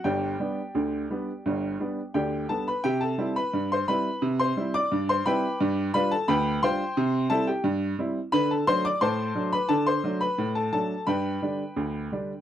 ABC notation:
X:1
M:2/4
L:1/16
Q:1/4=87
K:C
V:1 name="Upright piano"
[Gdg]8- | [Gdg]4 [Gdg]2 [Aa] [Bb] | [Gg] [Aa]2 [Bb]2 [cc'] [Bb]2- | [Bb] [cc']2 [dd']2 [cc'] [Bgb]2- |
[Bgb]2 [Bb] [Aa] [Bgb]2 [cgc']2- | [cgc']2 [Aa] [Gg] z4 | [Bb] [Aa] [cc'] [dd'] [cac']3 [Bb] | [Aa] [cc']2 [Bb]2 [Aa] [Aa]2 |
[Bgb]8 |]
V:2 name="Upright piano" clef=bass
[G,,,G,,]2 [G,B,D]2 [D,,D,]2 [G,B,D]2 | [G,,,G,,]2 [G,B,D]2 [D,,D,]2 [G,B,D]2 | C,2 [G,CE]2 G,,2 [G,CE]2 | C,2 [G,CE]2 G,,2 [G,CE]2 |
G,,2 [G,DF]2 D,,2 [G,DF]2 | C,2 [G,CE]2 G,,2 [G,CE]2 | D,2 [^F,A,D]2 A,,2 [F,A,D]2 | D,2 [^F,A,D]2 A,,2 [F,A,D]2 |
G,,2 [D,G,D]2 D,,2 [D,G,D]2 |]